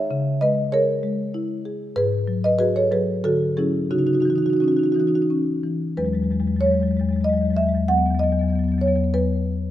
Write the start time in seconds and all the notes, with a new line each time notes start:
Already playing: G#4 C#5 E5
0.11 C#3
0.41 G#3 B4 D#5
0.72 G#4 A#4 C#5
1.03 G#3
1.34 E4
1.65 G#4
1.96 G#2 G#4 B4
2.28 F#3
2.44 B4 D#5
2.59 F#4 G#4 B4
2.76 A4 C#5
2.91 F#3 G#4 B4
3.24 D3 F#4 A4
3.57 F#3 C#4 E4 G#4
3.91 C#3 D#4 F#4
3.98 D#4 F#4
4.06 D#4 F#4
4.13 D#4 F#4
4.20 D#4 F#4
4.25 E3 D#4
4.30 F#4
4.36 D#4 F#4
4.42 D#4 F#4
4.50 D#4 F#4
4.57 D#4 F#4
4.62 C#4 D#4
4.68 F#4
4.72 D#4
4.77 D#4 F#4
4.83 D#4 F#4
4.92 E3 D#4 F#4
5.00 D#4 F#4
5.07 D#4 F#4
5.15 D#4 F#4
5.22 D#4
5.30 C#4
5.63 E3
5.97 E2 F#3 G#3 B4
6.05 E2 F#3 G#3
6.13 F#3 G#3
6.19 E2 F#3
6.24 G#3
6.30 E2 F#3 G#3
6.40 E2 F#3 G#3
6.47 F#3 G#3
6.52 E2 G#3
6.56 F#3
6.61 E2 G#3 C#5
6.66 F#3
6.71 E2 F#3 G#3
6.80 E2 F#3 G#3
6.88 E2 F#3 G#3
6.97 F#3 G#3
7.01 E2 G#3
7.09 E2 F#3
7.13 F#3 G#3
7.21 E2 G#3 D#5
7.25 F#3 G#3
7.32 E2 F#3
7.37 G#3
7.41 E2 F#3
7.45 G#3
7.50 E2 F#3 G#3
7.57 F#3 E5
7.61 E2 G#3
7.67 F#3 G#3
7.74 E2 F#3 G#3
7.88 E2 F#3 B3 F#5
7.98 E2 F#3 B3
8.06 F#3 B3
8.10 E2
8.14 F#3 B3
8.19 E2 F#3 B3 D#5
8.30 E2 F#3 B3
8.39 E2 F#3 B3
8.48 F#3 B3
8.53 E2 B3
8.59 F#3
8.63 E2 B3
8.68 F#3 B3
8.74 E2 F#3
8.79 B3 C#5
8.86 E2 F#3 B3
8.95 E2 F#3 B3
9.04 B3
9.14 E2 F#3 B3 B4